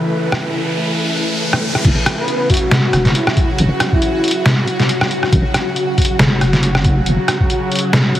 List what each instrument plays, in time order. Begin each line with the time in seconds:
Already playing: synth drone C#3 E3 B4, synth texture A3 E4, riser
0.32 cross-stick
1.53 cross-stick
1.75 cross-stick
1.85 wobble bass F#1, synth drone C#3 F#3 F#4, synth texture F#3 F#4, kick, closed hi-hat, crash
2.06 cross-stick, closed hi-hat
2.18 soft synth lead B4
2.28 closed hi-hat
2.50 soft synth lead F#4, kick, closed hi-hat
2.54 closed hi-hat
2.57 closed hi-hat
2.71 snare, closed hi-hat
2.93 wobble bass E1, cross-stick, closed hi-hat
3.05 snare, closed hi-hat
3.15 soft synth lead E4, closed hi-hat
3.27 cross-stick
3.37 kick, closed hi-hat
3.58 wobble bass F#1, closed hi-hat
3.80 cross-stick, closed hi-hat
3.92 soft synth lead E4, kick
4.02 closed hi-hat
4.24 closed hi-hat
4.28 closed hi-hat
4.31 closed hi-hat
4.46 snare, closed hi-hat
4.67 closed hi-hat
4.80 snare, closed hi-hat
4.89 closed hi-hat
5.01 cross-stick
5.11 closed hi-hat
5.23 cross-stick
5.32 wobble bass F#1, kick, closed hi-hat
5.54 cross-stick, closed hi-hat
5.76 closed hi-hat
5.98 kick, closed hi-hat
6.02 closed hi-hat
6.05 closed hi-hat
6.19 wobble bass F#1, snare, closed hi-hat
6.41 cross-stick, closed hi-hat
6.53 snare, closed hi-hat
6.63 closed hi-hat
6.75 cross-stick
6.84 kick, closed hi-hat
7.06 wobble bass F#1, closed hi-hat
7.28 cross-stick, closed hi-hat
7.40 kick
7.50 closed hi-hat
7.72 closed hi-hat
7.75 closed hi-hat
7.79 closed hi-hat
7.93 snare, closed hi-hat
8.15 closed hi-hat